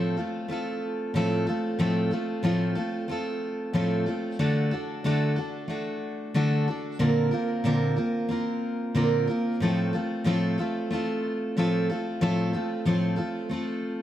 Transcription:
steel-string acoustic guitar
Already playing: A2 F3 A3 C4 F4 A4
0.17 A3 C4 F4 A4
0.48 A3 C4 F4 A4
1.14 A2 F3 A3 C4 F4 A4
1.47 A3 C4 F4 A4
1.79 A2 F3 A3 C4 F4 A4
2.11 A3 C4 F4 A4
2.43 A2 F3 A3 C4 F4 A4
2.75 A3 C4 F4 A4
3.08 A3 C4 F4 A4
3.73 A2 F3 A3 C4 F4 A4
4.06 A3 C4 F4 A4
4.39 D3 A3 D4 F#4 A4
4.71 D4 F#4 A4
5.04 D3 A3 D4 F#4 A4
5.36 D4 F#4 A4
5.68 A3 D4 F#4 A4
6.34 D3 A3 D4 F#4 A4
6.68 D4 F#4 A4
6.99 A#2 D3 A#3 C4 F4 A#4
7.31 A#3 C4 F4 A#4
7.64 A#2 D3 A#3 C4 F4 A#4
7.96 A#3 C4 F4 A#4
8.29 A#3 C4 F4 A#4
8.95 A#2 D3 A#3 C4 F4 A#4
9.27 A#3 C4 F4 A#4
9.60 A2 F3 A3 C4 F4 A4
9.93 A3 C4 F4 A4
10.24 A2 F3 A3 C4 F4 A4
10.58 A3 C4 F4 A4
10.91 A3 C4 F4 A4
11.57 A2 F3 A3 C4 F4 A4
11.90 A3 C4 F4 A4
12.21 A2 F3 A3 C4 F4 A4
12.53 A3 C4 F4 A4
12.85 A2 F3 A3 C4 F4 A4
13.16 A3 C4 F4 A4
13.49 A3 C4 F4 A4

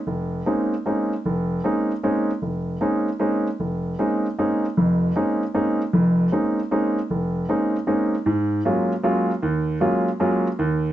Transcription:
grand piano
0.07 F1
0.46 G#3 A#3 C4 C#4 D#4
0.86 G#3 A#3 C4 C#4 D#4
1.25 F1
1.64 G#3 A#3 C4 C#4 D#4
2.03 G#3 A#3 C4 C#4 D#4
2.42 F1
2.81 G#3 A#3 C4 C#4 D#4
3.20 G#3 A#3 C4 C#4 D#4
3.60 F1
3.99 G#3 A#3 C4 C#4 D#4
4.39 G#3 A#3 C4 C#4 D#4
4.77 F1 F2
5.16 G#3 A#3 C4 C#4 D#4
5.54 G#3 A#3 C4 C#4 D#4
5.93 F1 F2
6.32 G#3 A#3 C4 C#4 D#4
6.71 G#3 A#3 C4 C#4 D#4
7.10 F1
7.49 G#3 A#3 C4 C#4 D#4
7.87 G#3 A#3 C4 C#4 D#4
8.26 G#2
8.65 F#3 G#3 A#3 C#4 F4
9.03 F#3 G#3 A#3 C#4 F4
9.43 D#2
9.80 F#3 G#3 A#3 C#4 F4
10.20 F#3 G#3 A#3 C#4 F4
10.59 D#2

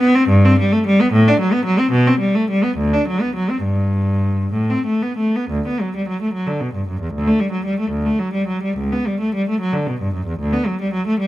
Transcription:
cello
0.00 B3
0.15 C4
0.28 G2
0.45 C4
0.59 G3
0.72 A3
0.86 G3
1.01 B3
1.12 A2
1.28 D4
1.40 F#3
1.53 B3
1.65 F#3
1.79 C4
1.91 B2
2.07 C4
2.20 G3
2.35 A3
2.50 G3
2.63 B3
2.77 D2
2.94 D4
3.08 F#3
3.21 B3
3.36 F#3
3.50 C4
3.63 G2
4.53 A2
4.70 C4
4.86 A3
5.03 B3
5.18 A3
5.36 B3
5.50 D2
5.68 B3
5.81 F#3
5.96 G3
6.08 F#3
6.22 A3
6.33 F#3
6.47 D3
6.61 B2
6.74 G2
6.88 F#2
7.01 E2
7.14 D2
7.27 A3
7.40 G3
7.52 F#3
7.66 G3
7.80 A3
7.91 D2
8.06 A3
8.19 F#3
8.34 G3
8.48 F#3
8.63 G3
8.77 C#2
8.92 B3
9.07 G3
9.21 A3
9.35 G3
9.49 A3
9.61 F#3
9.73 D3
9.87 B2
10.01 G2
10.14 F#2
10.27 E2
10.39 D2
10.53 B3
10.67 F#3
10.81 G3
10.93 F#3
11.07 A3
11.19 G3

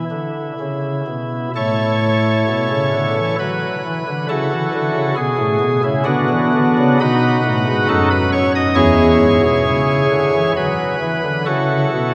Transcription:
pipe organ
Already playing: E4
0.11 D3
0.60 C#3
1.07 B2
1.56 A2 E4 A4 C#5
2.48 B2
2.70 C#3
2.93 D3
3.16 E3
3.39 F#3 B4
3.84 E3
4.07 D3
4.29 C#3 E4 F#4 A4
4.51 E3
4.73 D3
4.95 C#3
5.16 B2 G#4
5.38 A2
5.60 B2
5.83 C#3 E4
6.04 D3 B3 D4 F#4
6.29 E3
6.53 D3
6.78 C#3
7.00 B2 D#4 F#4 B4
7.45 A2
7.67 G#2
7.88 F#2 D#4 F#4 A4
8.10 B4
8.32 C#5
8.55 D#5
8.75 E2 E4 G#4 C#5
9.20 G#2
9.42 B2
9.65 C#3
10.11 D3
10.34 E3
10.56 F#3 B4
11.01 E3
11.24 D3
11.46 C#3 E4 F#4 A4
11.93 B2

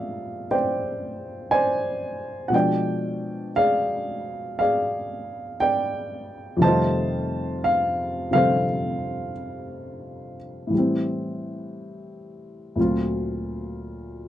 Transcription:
upright piano
Already playing: A#2 F3 G#3 A#3 C4 D4 G4 G#4 D5 E5 F5
0.51 C5 D5 G5
1.51 C5 D5 G#5
2.48 B2 F3 F#5
2.53 G#3 D4 D5 G5
3.56 G#4 D5 F5
4.59 G#4 D5 F5
5.60 D5 G5
6.57 F2 C3
6.61 D#3 G3 C5 D#5 A5
6.66 A3 F4
7.64 F5
8.31 C3 D3 F3 G3 C4 C5 F5
8.35 A4
10.67 A2 E3
10.74 G3 C4
12.76 D2 A#2 F#3 C4
12.81 F4

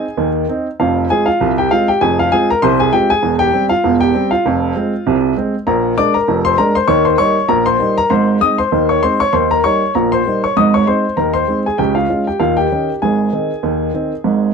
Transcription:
upright piano
Already playing: G#4 G#5
0.17 D#2 D#3
0.49 C4 D#4
0.80 F1 F2 F4 F5
1.10 G#3 C4 F4 G#4 G#5
1.26 F4 F5
1.40 C2 C3
1.58 G4 G5
1.71 G#3 C4 F4 F5
1.88 G4 G5
2.01 F1 F2 G#4 G#5
2.19 F4 F5
2.32 G#3 C4 F4 G#4 G#5
2.50 A#4 A#5
2.62 C2 C3 C5 C6
2.80 G#4 G#5
2.93 G#3 C4 F4 G4 G5
3.10 G#4 G#5
3.23 E1 E2
3.39 G4 G5
3.53 G3 C4
3.69 F4 F5
3.84 E1 E2
4.01 G4 G5
4.14 G3 C4
4.31 F4 F5
4.46 F1 F2
4.76 G#3 C4
5.07 C2 C3
5.37 G#3 C4
5.67 A#1 A#2 A#4 A#5
5.98 G#3 A#3 D4 D5 D6
6.14 A#4 A#5
6.28 F1 F2
6.45 C5 C6
6.58 G#3 A#3 D4 A#4 A#5
6.75 C5 C6
6.88 D#2 D#3 C#5 C#6
7.05 C5 C6
7.18 G3 A#3 D#4 C#5 C#6
7.48 A#1 A#2 A#4 A#5
7.66 C5 C6
7.79 G3 A#3 D#4
7.98 A#4 A#5
8.10 G#1 G#2 C5 C6
8.41 G#3 C4 D#4 D#5 D#6
8.58 C5 C6
8.72 D#2 D#3
8.89 C#5 C#6
9.03 G#3 C4 D#4 C5 C6
9.20 C#5 C#6
9.33 D#2 D#3 C5 C6
9.51 A#4 A#5
9.64 G3 A#3 D#4 C#5 C#6
9.95 A#1 A#2 A#4 A#5
10.12 C5 C6
10.26 G3 A#3 D#4
10.44 C#5 C#6
10.57 G#1 G#2 D#5 D#6
10.74 C#5 C#6
10.87 G#3 C4 D#4 C5 C6
11.17 D#2 D#3 A#4 A#5
11.34 C5 C6
11.48 G#3 C4 D#4
11.66 G#4 G#5
11.78 C#2 C#3 G4 G5
11.95 F4 F5
12.09 G#3 C#4 F4
12.27 G4 G5
12.40 D#2 D#3 F4 F5
12.57 G4 G5
12.72 D#3 C#4 D#4
13.02 G#1 G#2 G#4 G#5
13.33 D#3 C4 D#4
13.63 D#2 D#3
13.94 D#3 C4 D#4
14.24 G#1 G#2

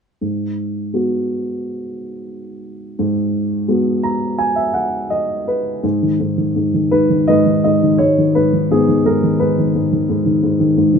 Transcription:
grand piano
0.21 G#2
0.94 G#3 B3 F#4
2.99 G#2
3.68 G#3 B3 F#4
4.03 A#5
4.38 G#5
4.56 E5
4.74 F#5
5.10 D#5
5.48 B4
5.83 G#2
6.03 D#3
6.20 G#2
6.38 D#3
6.56 G#2
6.74 D#3
6.91 G#2 B4
7.10 D#3
7.28 G#2 B4 D#5
7.46 D#3
7.64 G#2 D#5
7.83 D#3
7.98 G#2 C#5
8.18 D#3
8.35 G#2 B4
8.53 D#3
8.71 G#2 B3 G#4
8.88 D#3
9.05 G#2 A#4
9.24 D#3
9.40 G#2 B4
9.58 D#3
9.75 G#2
9.92 D#3
10.09 G#2
10.26 D#3
10.43 G#2
10.60 D#3
10.77 G#2
10.94 D#3

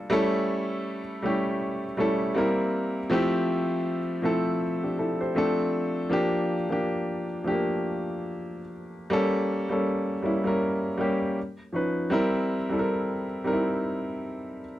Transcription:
grand piano
Already playing: G3 A#3 D4 F4 A4
0.10 G3 A3 C#4 E4 A4
1.22 G3 A3 C#4 E4 G4
1.97 G3 A3 C#4 E4 A4
2.34 G3 A#3 C4 E4 A#4
3.10 F3 A3 C4 E4 G4
4.22 F3 A3 C4 E4 A4
4.83 D4 G4
4.99 E4 A4
5.21 G4 C5
5.35 F3 A3 C4 D4 A4
6.10 F3 A#3 D4 G4
6.69 F3 A#3 D4 G4
7.44 F3 A3 D4 G4
7.52 A#3
9.10 G3 A#3 C#4 A4
9.69 G3 A#3 C#4 A4
10.22 G3 A#3 C#4 E4
10.44 G3 A#3 C#4 A#4
10.97 G3 A#3 C#4 G4
11.73 F3 C#4 D#4 B4
12.10 G3 C4 E4 A#4
12.69 G3 C4 E4 A4
12.79 A#4
13.44 G3 C4 D#4 A#4
13.53 E4

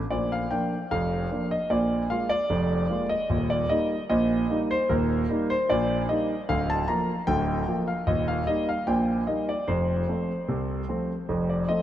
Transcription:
grand piano
0.10 A#1 A#2 D5
0.32 F5
0.51 F3 A#3 D4 G5
0.91 F1 F2 F5
1.31 F3 A#3 D4
1.51 D#5
1.70 A#1 A#2 D5
2.10 G#3 A#3 F4 F5
2.29 D5
2.50 F1 F2
2.89 G#3 A#3 F4
3.09 D#5
3.30 D#1 D#2
3.50 D5
3.69 G3 A#3 D#4 D#5
4.10 A#1 A#2 D#5
4.50 G3 A#3 D#4
4.71 C5
4.89 D#1 D#2 A#4
5.29 G3 A#3 D#4
5.50 C5
5.70 A#1 A#2 D5
6.09 G3 A#3 D#4 D#5
6.49 D1 D2 F5
6.70 A5
6.88 F3 A#3 F4 A#5
7.27 D1 D2 G5
7.67 F3 A#3 F4
7.88 F5
8.07 D#1 D#2 D#5
8.28 F5
8.47 G3 A#3 D#4 D#5
8.69 F5
8.87 A#1 A#2 G5
9.27 G3 A#3 D#4 D#5
9.49 D5
9.68 F1 F2 C5
10.08 F3 A3 C4
10.48 C2 C3
10.89 F3 A3 C4
11.29 F1 F2
11.49 D5
11.69 F3 A3 C4 D#5

